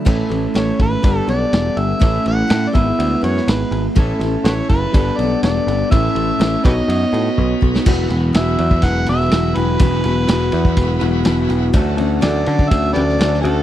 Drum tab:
CC |x---------------|----------------|----------------|----------------|
RD |--x-x-x-x-x-x-x-|x-x-x-x-x-x-x-x-|x-x-x-x-x-x-x-x-|x-x-x-x-x-x-----|
SD |----o-------o---|----o------oo---|--o-o-------o---|----o----------o|
BD |o-----o-o-------|o-----o---------|o-----o-o-------|o-----o-----o-o-|

CC |x---------------|----------------|----------------|
RD |--x-x-x-x-x-x-x-|x-x-x-x-x-x-x-x-|x-x-x-x-x-x-x-x-|
SD |----o------oo---|----o-------o---|----o------ooo--|
BD |o------oo-------|o------oo-------|o------oo-------|